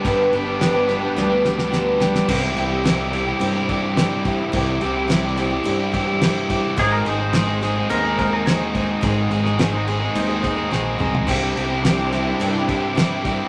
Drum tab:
CC |x-x-x-x---------|x-x-x-x-x-x-x-x-|x-x-x-x-x-x-x-x-|x-x-x-x-x-x-x-x-|
SD |----o-o-o-ooo-oo|----o-------o---|----o-o-----o---|----o-o-----o---|
T2 |----------------|----------------|----------------|----------------|
FT |----------------|----------------|----------------|----------------|
BD |o---------------|o---------o---o-|o---------o---o-|o---------o---o-|

CC |x-x-x-x-x-x-----|x-x-x-x-x-x-x-x-|
SD |---oo-------o---|----o-o-----o---|
T2 |--------------o-|----------------|
FT |---------------o|----------------|
BD |o---------o-----|o---------o---o-|